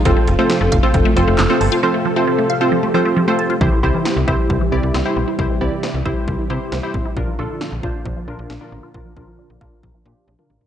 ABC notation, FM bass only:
X:1
M:4/4
L:1/16
Q:1/4=135
K:Cmix
V:1 name="FM bass" clef=bass
F,,, z F,,, z2 F,,, F,,, z F,,, z F,,, F,,, F,,, z G,,, z | z16 | C,, z C,, z2 C,, C,, z C,, z C,, C,, C,, z B,,, z | C,, z C,, z2 C,, C,, z C,, z C, z C,, z A,,, z |
B,,, z B,,, z2 B,,, B,,, z B,,, z B,,, B,,, B,,, z A,,, z | B,,, z B,,, z2 B,,, B,,, z B,,, z B,, z B,,, z A,,, z |]